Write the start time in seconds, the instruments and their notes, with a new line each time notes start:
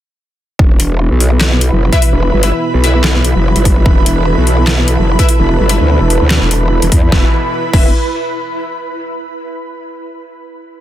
0.59 wobble bass E1, supersaw synth B2 E3 E4 B4, ambient pad E4, kick
0.79 wobble bass E1, ambient pad B4 B5, closed hi-hat
1.11 wobble bass B1
1.20 open hi-hat
1.41 snare, clap
1.61 closed hi-hat
1.72 wobble bass F#1
1.93 synth stab E4 B4 E5, kick, closed hi-hat
2.02 open hi-hat
2.13 wobble bass E1
2.33 wobble bass G1
2.43 synth stab E4 B4 E5, closed hi-hat
2.74 wobble bass B1
2.84 synth stab E4 B4 E5, open hi-hat
3.04 snare, clap
3.25 closed hi-hat
3.35 wobble bass F#1
3.56 wobble bass G1, closed hi-hat
3.65 kick, open hi-hat
3.86 wobble bass E1, supersaw synth A4, kick
4.06 wobble bass E1, closed hi-hat
4.37 wobble bass B1
4.47 open hi-hat
4.67 snare, clap
4.88 closed hi-hat
4.99 wobble bass F#1
5.19 synth stab E4 B4 E5, kick, closed hi-hat
5.29 open hi-hat
5.39 wobble bass E1
5.60 wobble bass G1
5.69 synth stab E4 B4 E5, closed hi-hat
5.80 wobble bass D2
6.01 wobble bass E1
6.10 open hi-hat
6.21 wobble bass D2
6.31 snare, clap
6.41 wobble bass E1
6.51 closed hi-hat
6.82 wobble bass E1, closed hi-hat
6.92 wobble bass E2, kick, open hi-hat
7.12 wobble bass E1, supersaw synth B2 E3 E4 B4, ambient pad E4, synth stab E4 B4 E5, kick, snare
7.19 ambient pad B4
7.25 ambient pad B5
7.73 wobble bass E1, synth stab E4 B4 E5, kick, crash